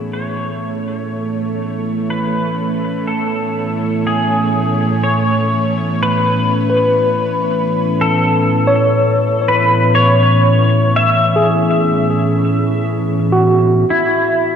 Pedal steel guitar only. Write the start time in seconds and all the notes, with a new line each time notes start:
Already playing: E4
0.13 C#5
2.10 B4
3.07 A4
4.07 G#4
5.04 C#5
6.03 B4
8.01 A4
9.48 B4
9.95 C#5
10.96 E5
13.90 E4